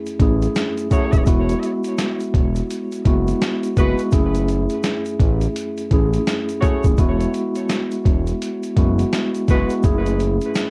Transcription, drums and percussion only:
0.06 closed hi-hat, shaker
0.20 kick, closed hi-hat
0.42 closed hi-hat, shaker
0.56 snare, closed hi-hat, shaker
0.77 closed hi-hat, shaker
0.91 kick, closed hi-hat, shaker
1.13 kick, closed hi-hat, shaker
1.26 kick, closed hi-hat, shaker
1.49 closed hi-hat, shaker
1.63 closed hi-hat, shaker
1.84 closed hi-hat, shaker
1.98 snare, closed hi-hat, shaker
2.20 closed hi-hat, shaker
2.34 kick, closed hi-hat
2.55 closed hi-hat, shaker
2.70 closed hi-hat, shaker
2.92 closed hi-hat, shaker
3.05 kick, closed hi-hat
3.28 closed hi-hat, shaker
3.42 snare, closed hi-hat, shaker
3.63 closed hi-hat, shaker
3.77 kick, closed hi-hat, shaker
3.98 closed hi-hat, shaker
4.12 kick, closed hi-hat, shaker
4.35 closed hi-hat, shaker
4.48 closed hi-hat, shaker
4.70 closed hi-hat, shaker
4.84 snare, closed hi-hat, shaker
5.06 closed hi-hat, shaker
5.20 kick, closed hi-hat
5.41 closed hi-hat, shaker
5.56 closed hi-hat, shaker
5.77 closed hi-hat, shaker
5.91 kick, closed hi-hat
6.13 closed hi-hat, shaker
6.27 snare, closed hi-hat, shaker
6.49 closed hi-hat, shaker
6.62 kick, closed hi-hat, shaker
6.84 kick, closed hi-hat, shaker
6.97 kick, closed hi-hat, shaker
7.20 closed hi-hat, shaker
7.34 closed hi-hat, shaker
7.55 closed hi-hat, shaker
7.69 snare, closed hi-hat, shaker
7.91 closed hi-hat, shaker
8.05 kick, closed hi-hat
8.27 closed hi-hat, shaker
8.42 closed hi-hat, shaker
8.63 closed hi-hat, shaker
8.77 kick, closed hi-hat
8.99 closed hi-hat, shaker
9.13 snare, closed hi-hat, shaker
9.35 closed hi-hat, shaker
9.48 kick, snare, closed hi-hat, shaker
9.70 closed hi-hat, shaker
9.83 kick, closed hi-hat, shaker
10.06 closed hi-hat, shaker
10.20 closed hi-hat, shaker
10.41 closed hi-hat, shaker
10.55 snare, closed hi-hat, shaker

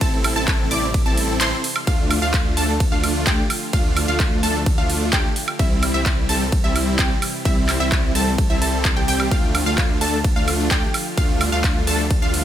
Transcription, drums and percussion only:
0.01 kick, ride
0.24 open hi-hat, high woodblock
0.48 kick, clap, ride
0.71 open hi-hat
0.94 kick, ride
1.17 open hi-hat
1.41 clap, ride
1.64 open hi-hat
1.76 high woodblock
1.87 kick, ride
2.11 open hi-hat, high woodblock
2.34 kick, clap, ride
2.57 open hi-hat
2.80 kick, ride
3.04 open hi-hat, high woodblock
3.27 kick, clap, ride
3.50 open hi-hat, high woodblock
3.73 kick, ride
3.97 open hi-hat, high woodblock
4.20 kick, clap, ride
4.43 open hi-hat
4.66 kick, ride
4.90 open hi-hat
5.13 kick, clap, ride
5.36 open hi-hat
5.48 high woodblock
5.59 kick, ride
5.83 open hi-hat, high woodblock
6.06 kick, clap, ride
6.29 open hi-hat
6.52 kick, ride
6.76 open hi-hat, high woodblock
6.99 kick, clap, ride
7.22 open hi-hat, high woodblock
7.45 kick, ride
7.69 clap, open hi-hat, high woodblock
7.92 kick, clap, ride
8.15 open hi-hat
8.38 kick, ride
8.62 open hi-hat
8.85 kick, clap, ride
9.08 open hi-hat
9.20 high woodblock
9.31 kick, ride
9.55 open hi-hat, high woodblock
9.78 kick, clap, ride
10.01 open hi-hat
10.24 kick, ride
10.48 open hi-hat, high woodblock
10.71 kick, clap, ride
10.94 open hi-hat, high woodblock
11.17 kick, ride
11.41 open hi-hat, high woodblock
11.64 kick, clap, ride
11.87 open hi-hat
12.11 kick, ride
12.34 open hi-hat

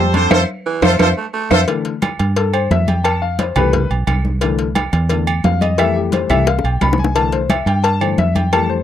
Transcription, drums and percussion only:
0.14 high conga, low agogo
0.31 cowbell, high conga, high timbale, claves
0.82 cowbell, high conga, high timbale, claves
0.99 cowbell, high conga, high timbale, claves
1.51 cowbell, high conga, high timbale, claves
1.68 cowbell, high conga, low agogo
1.85 cowbell, high conga
2.02 cowbell, high conga, low agogo, claves
2.19 cowbell, high conga, low agogo
2.36 cowbell, high conga, low agogo
2.53 high conga, low agogo, claves
2.71 cowbell, high conga, low timbale
2.88 high conga, low agogo
3.05 cowbell, high conga, low agogo, claves
3.22 high conga
3.39 cowbell, high conga, low agogo
3.56 cowbell, high conga, low conga, low agogo, claves
3.73 cowbell, high conga, low conga
3.90 high conga, low agogo
4.07 cowbell, high conga, low agogo, claves
4.25 high conga
4.41 cowbell, high conga, low agogo
4.59 cowbell, high conga
4.75 cowbell, high conga, low agogo, claves
4.93 cowbell, high conga, low agogo
5.09 cowbell, high conga, low agogo
5.27 high conga, low agogo, claves
5.44 cowbell, high conga, low timbale
5.61 high conga, low agogo
5.78 cowbell, high conga, low agogo, claves
5.96 high conga
6.12 cowbell, high conga, low agogo
6.30 cowbell, high conga, low conga, low agogo, claves
6.47 cowbell, high bongo
6.59 high bongo
6.64 high conga, low agogo
6.81 cowbell, high conga, low timbale, low agogo, claves
6.93 low bongo
6.98 high conga
7.04 low bongo
7.16 cowbell, low agogo
7.32 cowbell, high conga
7.50 cowbell, high conga, low agogo, claves
7.66 cowbell, high conga, low agogo
7.84 cowbell, high conga, low agogo
8.01 high conga, low agogo, claves
8.18 cowbell, high conga
8.35 high conga, low agogo
8.53 cowbell, high conga, low agogo, claves
8.70 high conga

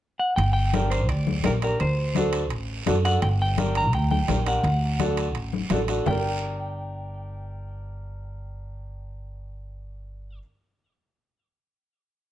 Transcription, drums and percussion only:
0.38 high timbale, long guiro
0.73 high conga, high timbale, short guiro
0.91 high timbale, short guiro
1.09 high timbale, long guiro
1.27 high conga
1.43 high conga, high timbale, low timbale, short guiro
1.62 high timbale, short guiro
1.80 high timbale, long guiro
2.15 high conga, high timbale, short guiro
2.33 high timbale, short guiro
2.50 high timbale, long guiro
2.86 high conga, high timbale, short guiro
3.05 high timbale, short guiro
3.22 high timbale, long guiro
3.58 high conga, high timbale, short guiro
3.75 high timbale, short guiro
3.93 high timbale, long guiro
4.11 high conga
4.28 high conga, high timbale, low timbale, short guiro
4.46 high timbale, short guiro
4.64 high timbale, long guiro
5.00 high conga, high timbale, short guiro
5.17 high timbale, short guiro
5.35 high timbale, long guiro
5.53 high conga
5.70 high conga, high timbale, low timbale, short guiro
5.88 high timbale, short guiro
6.06 low conga, low timbale, long guiro

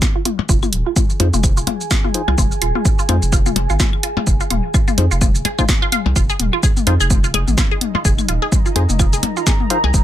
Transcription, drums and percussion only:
0.02 kick, snare, shaker
0.25 closed hi-hat, high tom
0.39 percussion blips
0.49 kick, shaker
0.63 high tom, claves, shaker
0.73 closed hi-hat
0.96 kick, high tom, shaker
1.10 shaker
1.20 closed hi-hat, percussion blips
1.33 high tom, shaker
1.44 kick, claves, shaker
1.57 shaker
1.67 closed hi-hat, high tom, percussion blips
1.81 shaker
1.91 kick, snare, shaker
2.04 high tom
2.14 closed hi-hat
2.28 percussion blips, claves
2.38 kick, high tom, shaker
2.52 shaker
2.62 closed hi-hat
2.75 high tom
2.85 kick, shaker
2.99 shaker
3.09 closed hi-hat, high tom, percussion blips, claves
3.22 shaker
3.32 kick, shaker
3.46 high tom, shaker
3.56 closed hi-hat, percussion blips
3.70 shaker
3.80 kick, snare, high tom, shaker
3.93 claves
4.03 closed hi-hat
4.17 high tom, percussion blips
4.27 kick, shaker
4.40 shaker
4.50 closed hi-hat, high tom
4.74 kick, claves, shaker
4.88 high tom, shaker
4.98 closed hi-hat, percussion blips
5.11 shaker
5.21 kick, high tom, shaker
5.35 shaker
5.45 closed hi-hat, percussion blips
5.59 kick, high tom, claves, shaker
5.69 kick, snare, shaker
5.92 closed hi-hat, high tom
6.06 percussion blips
6.16 kick, shaker
6.29 shaker
6.40 closed hi-hat, high tom
6.53 claves
6.63 kick, shaker
6.77 high tom, shaker
6.87 closed hi-hat, percussion blips
7.00 shaker
7.10 kick, high tom, shaker
7.24 shaker
7.34 closed hi-hat, percussion blips, claves
7.48 high tom, shaker
7.58 kick, snare, shaker
7.81 closed hi-hat, high tom
7.95 percussion blips
8.05 kick, shaker
8.18 high tom, claves, shaker
8.29 closed hi-hat
8.52 kick, high tom, shaker
8.66 shaker
8.76 closed hi-hat, percussion blips
8.89 high tom, shaker
8.99 kick, claves, shaker
9.13 shaker
9.23 closed hi-hat, high tom, percussion blips
9.37 shaker
9.47 kick, snare, shaker
9.60 high tom
9.70 closed hi-hat
9.84 percussion blips, claves
9.94 kick, high tom, shaker

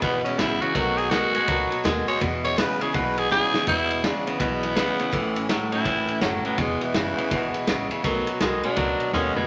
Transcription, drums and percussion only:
0.02 kick, ride
0.26 ride
0.39 snare, ride
0.62 ride
0.75 kick, ride
0.98 ride
1.11 snare, ride
1.35 ride
1.48 kick, ride
1.72 ride
1.85 snare, ride
2.08 ride
2.21 kick, ride
2.45 ride
2.58 snare, ride
2.81 ride
2.94 kick, ride
3.18 ride
3.31 snare
3.54 snare
3.67 kick, ride
3.91 ride
4.04 snare, ride
4.27 ride
4.40 kick, ride
4.63 ride
4.76 snare, ride
4.99 ride
5.13 kick, ride
5.36 ride
5.49 snare, ride
5.72 ride
5.85 kick, ride
6.08 ride
6.21 snare, ride
6.45 ride
6.58 kick, ride
6.81 ride
6.94 snare, ride
7.18 ride
7.31 kick, ride
7.54 ride
7.67 snare, ride
7.91 ride
8.04 kick, ride
8.27 ride
8.41 snare, ride
8.63 ride
8.76 kick, ride
9.00 ride
9.13 snare
9.36 floor tom

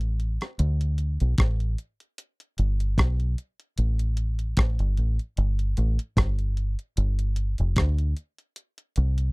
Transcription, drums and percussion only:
0.01 closed hi-hat
0.20 closed hi-hat
0.41 cross-stick, closed hi-hat
0.59 closed hi-hat
0.81 closed hi-hat
0.98 closed hi-hat
1.20 closed hi-hat
1.38 kick, cross-stick, closed hi-hat
1.60 closed hi-hat
1.78 closed hi-hat
2.00 closed hi-hat
2.18 closed hi-hat
2.40 closed hi-hat
2.58 closed hi-hat
2.80 closed hi-hat
2.98 kick, cross-stick, closed hi-hat
3.20 closed hi-hat
3.38 closed hi-hat
3.60 closed hi-hat
3.78 closed hi-hat
3.99 closed hi-hat
4.17 closed hi-hat
4.39 closed hi-hat
4.57 kick, cross-stick, closed hi-hat
4.79 closed hi-hat
4.97 closed hi-hat
5.19 closed hi-hat
5.37 closed hi-hat
5.59 closed hi-hat
5.77 closed hi-hat
5.99 closed hi-hat
6.17 kick, cross-stick, closed hi-hat
6.39 closed hi-hat
6.57 closed hi-hat
6.79 closed hi-hat
6.97 closed hi-hat
7.19 closed hi-hat
7.36 closed hi-hat
7.58 closed hi-hat
7.76 kick, cross-stick, closed hi-hat
7.99 closed hi-hat
8.17 closed hi-hat
8.38 closed hi-hat
8.56 closed hi-hat
8.78 closed hi-hat
8.96 closed hi-hat
9.18 closed hi-hat

